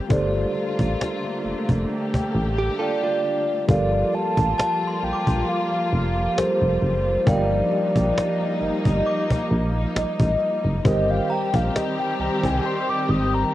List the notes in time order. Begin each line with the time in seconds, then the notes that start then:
0.09 G1 D3 G3 A3 A#3 F4 G4 A4 C5 D5, cajon bass
0.34 cajon slap
0.55 cajon slap
0.79 A1, cajon bass
1.01 cajon slap
1.25 cajon slap
1.44 F1, cajon slap
1.69 F1, cajon bass
1.89 G4, cajon slap
2.14 cajon bass
2.35 A1
2.58 G4, cajon slap
2.79 F4 A4 D5
3.03 D4 F4
3.67 G1 F3 G3 A#3 F4 G4 A4 A#4 D5 F5, cajon bass
3.92 cajon slap
4.13 A5, cajon slap
4.37 A1, cajon bass
4.58 A5, cajon slap
4.83 cajon slap
4.87 C6
5.03 A#1 G5, cajon slap
5.13 D6
5.27 A#1, cajon bass
5.47 F5, cajon slap
5.72 cajon slap
5.93 F1
6.16 cajon slap
6.37 G3 G4 A4 A#4 C5, cajon slap
6.62 F1, cajon slap
6.82 F#1, cajon slap
7.25 G1 G3 A#3 D#4 G4 A#4 D5 F5 G5, cajon bass
7.51 cajon slap
7.71 cajon slap
7.96 A#1, cajon bass
8.18 cajon slap
8.41 cajon slap
8.61 G1 D#5, cajon slap
8.85 G1, cajon bass
9.06 D6, cajon slap
9.30 cajon bass
9.51 A#1
9.74 cajon slap
9.96 A1 D#5, cajon slap
10.20 A1, cajon bass
10.40 cajon slap
10.65 F#1
10.84 G1 D#3 G3 C4 G4 A#4 C5 D#5, cajon bass
11.09 F5, cajon slap
11.30 G5 A#5, cajon slap
11.54 A#1 F5, cajon bass
11.76 D#5, cajon slap
11.99 G5, cajon slap
12.19 C2 A#5, cajon slap
12.44 C2 G#5, cajon bass
12.64 C6, cajon slap
12.89 D6, cajon slap
13.09 G#1 D#6
13.33 A#5, cajon slap